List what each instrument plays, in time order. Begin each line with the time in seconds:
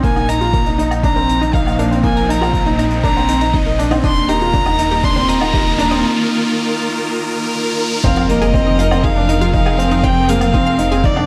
Already playing: string section D#4, riser
0.03 detuned saw bass A#1, string section A#2, felt piano A#3, violin G#5, kick, closed hi-hat
0.16 synth arpeggio sound D#4, closed hi-hat, low woodblock
0.20 string section F3
0.28 felt piano D#4, synth arpeggio sound A#5, violin A#5, closed hi-hat
0.41 string section C4, felt piano F4, closed hi-hat
0.53 synth arpeggio sound A#4, kick, closed hi-hat
0.66 felt piano D#4, closed hi-hat
0.78 synth arpeggio sound D#4, felt piano D#4, closed hi-hat
0.91 synth arpeggio sound A#5, closed hi-hat, low woodblock
1.03 felt piano D4, violin A#5, kick, closed hi-hat
1.16 felt piano C4, synth arpeggio sound A#4, closed hi-hat
1.29 closed hi-hat
1.41 felt piano D#4, synth arpeggio sound D#4, closed hi-hat
1.53 felt piano D#4, violin F5, synth arpeggio sound A#5, kick, closed hi-hat
1.67 closed hi-hat, low woodblock
1.79 felt piano D4, synth arpeggio sound A#4, closed hi-hat
1.91 felt piano C4, closed hi-hat
2.04 felt piano A#3, synth arpeggio sound D#4, violin G#5, kick, closed hi-hat
2.17 synth arpeggio sound A#5, closed hi-hat
2.29 felt piano D#4, violin A#5, closed hi-hat
2.41 felt piano F4, synth arpeggio sound A#4, closed hi-hat, low woodblock
2.54 kick, closed hi-hat
2.66 synth arpeggio sound D#4, felt piano D#4, closed hi-hat
2.78 felt piano D#4, synth arpeggio sound A#5, closed hi-hat
2.90 closed hi-hat
3.03 felt piano D4, synth arpeggio sound A#4, violin A#5, kick, closed hi-hat
3.17 felt piano C4, closed hi-hat, low woodblock
3.28 synth arpeggio sound D#4, closed hi-hat
3.41 felt piano D#4, synth arpeggio sound A#5, closed hi-hat
3.54 felt piano D#4, violin D#5, kick, closed hi-hat
3.66 synth arpeggio sound A#4, closed hi-hat
3.79 felt piano D4, closed hi-hat
3.91 felt piano C4, synth arpeggio sound D#4, closed hi-hat, low woodblock
4.03 detuned saw bass D#1, string section D#3, felt piano D4, synth arpeggio sound D#5, violin C6, kick, closed hi-hat
4.15 string section A#3, closed hi-hat
4.25 synth arpeggio sound G4, string section A#4, violin A#5, closed hi-hat
4.29 felt piano D#4
4.41 felt piano F4, closed hi-hat
4.54 synth arpeggio sound D4, kick, closed hi-hat
4.66 felt piano D#4, synth arpeggio sound D#5, closed hi-hat, low woodblock
4.78 felt piano D#4, string section F4, closed hi-hat
4.91 synth arpeggio sound G4, closed hi-hat
5.03 felt piano D4, violin C6, kick, closed hi-hat
5.16 felt piano C4, synth arpeggio sound D4, closed hi-hat
5.29 synth arpeggio sound D#5, violin A#5, closed hi-hat
5.40 felt piano D#4, closed hi-hat, low woodblock
5.53 felt piano D#4, synth arpeggio sound G4, kick, closed hi-hat
5.66 closed hi-hat
5.78 synth arpeggio sound D4, felt piano D4, closed hi-hat
5.91 felt piano C4, synth arpeggio sound D#5, closed hi-hat
8.03 detuned saw bass F1, string section F3, felt piano C4, synth arpeggio sound D#4, violin F5, kick, closed hi-hat, impact
8.16 synth arpeggio sound F5, low woodblock
8.23 string section C4 G#4
8.29 felt piano A#3, violin D#5, closed hi-hat
8.42 synth arpeggio sound G#4, closed hi-hat
8.54 felt piano C4, kick, closed hi-hat
8.67 synth arpeggio sound D#4
8.79 felt piano D#4, synth arpeggio sound F5, closed hi-hat
8.91 felt piano C4, closed hi-hat, low woodblock
9.03 felt piano D#4, synth arpeggio sound G#4, violin F5, kick, closed hi-hat
9.16 felt piano D4
9.29 felt piano D#4, synth arpeggio sound D#4, closed hi-hat
9.41 felt piano F4, synth arpeggio sound F5, closed hi-hat
9.54 felt piano D#4, violin F5, kick, closed hi-hat
9.66 synth arpeggio sound G#4, low woodblock
9.78 felt piano C4, closed hi-hat
9.91 synth arpeggio sound D#4, closed hi-hat
10.03 felt piano C4, synth arpeggio sound F5, violin G5, kick, closed hi-hat
10.28 felt piano A#3, synth arpeggio sound G#4, violin F5, closed hi-hat
10.41 closed hi-hat, low woodblock
10.54 felt piano C4, synth arpeggio sound D#4, kick, closed hi-hat
10.67 synth arpeggio sound F5
10.78 felt piano D#4, closed hi-hat
10.91 felt piano C4, synth arpeggio sound G#4, closed hi-hat
11.03 felt piano D#4, violin D5, kick, closed hi-hat
11.16 felt piano D4, synth arpeggio sound D#4, low woodblock